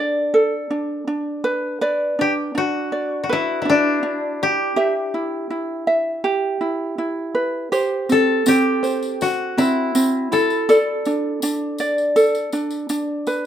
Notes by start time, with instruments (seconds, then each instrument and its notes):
Already playing: ukulele D4 A4 D5, koto A4
0.34 ukulele A4
0.70 ukulele D4
1.07 ukulele D4
1.44 ukulele B4
1.81 ukulele B4 D5
2.19 ukulele D4, koto G4
2.55 ukulele D4, koto F#4
2.92 ukulele D5
3.23 koto F#4
3.29 koto E4, ukulele B4
3.62 ukulele D4, koto E4
3.70 koto D4
4.03 ukulele D4
4.43 koto G4
4.76 ukulele G4 E5
5.14 ukulele E4
5.50 ukulele E4
5.87 ukulele E5
6.24 ukulele G4
6.61 ukulele E4
6.98 ukulele E4
7.35 ukulele B4
7.72 ukulele G4 C5, tambourine
8.09 ukulele C4, koto A4, tambourine
8.46 ukulele C4, koto G4, tambourine
8.83 ukulele C5, tambourine
9.03 tambourine
9.21 koto F#4, tambourine
9.57 ukulele C4, koto E4, tambourine
9.95 ukulele C4, tambourine
10.32 ukulele E4, koto A4, tambourine
10.50 tambourine
10.69 ukulele A4 D5, tambourine
11.05 ukulele D4, tambourine
11.42 ukulele D4, tambourine
11.78 ukulele D5, tambourine
11.98 tambourine
12.16 ukulele A4, tambourine
12.35 tambourine
12.53 ukulele D4, tambourine
12.71 tambourine
12.89 ukulele D4, tambourine
13.27 ukulele B4, tambourine